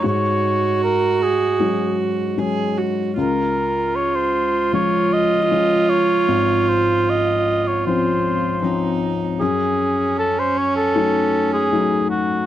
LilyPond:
<<
  \new Staff \with { instrumentName = "Cor anglais" } { \time 4/4 \key des \major \tempo 4 = 77 des''4 bes'8 aes'4 r4. | bes'4 des''16 c''8. des''8 ees''4 des''8~ | des''8 c''8 ees''8. des''16 c''4. r8 | aes'4 a'16 c''16 des''16 a'4 aes'8. ges'8 | }
  \new Staff \with { instrumentName = "Viola" } { \time 4/4 \key des \major ges'2. aes'8 ges'8 | f'1~ | f'2. ees'4 | des'1 | }
  \new Staff \with { instrumentName = "Felt piano" } { \clef bass \time 4/4 \key des \major aes,2 <ges aes des'>4 <ges aes des'>4 | des,2 <f aes des'>4 <f aes des'>4 | aes,,2 <f c' des'>4 <f c' des'>4 | ges,2 <ges a ees'>4 <ges a ees'>4 | }
>>